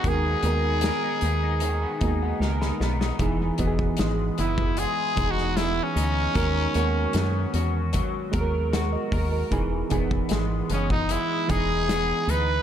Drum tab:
HH |x-x-x-x-x-x-----|x-x-x-x-x-x-x-x-|x-x-x-x-x-x-x-o-|x-x-x-x-x-x-x-x-|
SD |----o-------oooo|----o------oo---|----o-------o---|----o-------o---|
BD |o---------o-----|o-oo---o--o-----|o-------o-o---o-|o-oo---o--o-----|